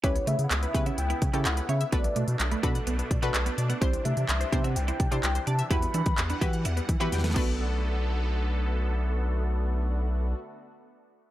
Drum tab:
CC |--------------------------------|--------------------------------|--------------------------------|----------------------------x---|
HH |x-x-x-x-x-x-x-x-x-x-x-x-x-x-x-x-|x-x-x-x-x-x-x-x-x-x-x-x-x-x-x-x-|x-x-x-x-x-x-x-x-x-x-x-x-x-x-x-x-|x-x-x-x-x-x-x-x-x-x-x-x-x-x-----|
CP |--------x---------------x-------|--------x---------------x-------|--------x---------------x-------|--------x-----------------------|
SD |--------------------------------|--------------------------------|--------------------------------|------------------------oooo----|
BD |o-----------o-------o-----------|o-----------o-------o-----------|o-----------o-------o-----------|o-----o-----o-------o-------o---|

CC |--------------------------------|--------------------------------|
HH |--------------------------------|--------------------------------|
CP |--------------------------------|--------------------------------|
SD |--------------------------------|--------------------------------|
BD |--------------------------------|--------------------------------|